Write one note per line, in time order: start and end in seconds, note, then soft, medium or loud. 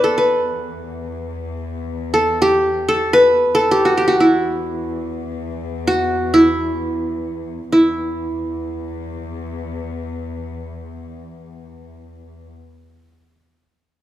0.00 3.53 E2 medium
0.00 1.21 A4 medium
0.00 0.17 B4 medium
0.00 0.69 D5 medium
0.00 0.38 E5 medium
0.18 1.58 B4 medium
2.14 2.88 A4 medium
2.42 3.67 G4 medium
2.89 3.54 A4 medium
3.13 4.23 B4 loud
3.55 7.73 E2 medium
3.55 4.72 A4 medium
3.71 3.91 G4 medium
3.85 4.03 F#4 medium
3.97 4.14 G4 medium
4.08 5.37 F#4 medium
4.20 5.60 E4 medium
5.87 7.17 F#4 medium
6.34 7.72 E4 medium
7.72 12.47 E2 medium
7.72 12.46 E4 medium